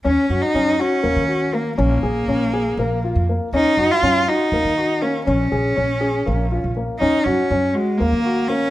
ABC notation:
X:1
M:7/8
L:1/16
Q:1/4=121
K:Ebm
V:1 name="Cello"
D3 E3 D6 B,2 | B,12 z2 | E3 F3 E6 D2 | D12 z2 |
E2 D4 A,2 B,4 D2 |]
V:2 name="Grand piano"
D2 G2 D2 G2 B,2 G2 B,2 | D2 A2 D2 A2 B,2 F2 B,2 | D2 G2 D2 G2 B,2 G2 B,2 | D2 A2 D2 A2 B,2 F2 B,2 |
D2 G2 D2 G2 B,2 G2 B,2 |]
V:3 name="Upright bass" clef=bass
E,, z G,, z G,,2 z2 E,, E,4- E, | B,,,2 B,,,2 B,,,4 B,,,3 F,,2 z | E,, z G,, z G,,2 z2 E,, E,4- E, | B,,,2 B,,,2 B,,,4 B,,,3 B,,,2 z |
E,, z G,, z G,,2 z2 E,, E,4- E, |]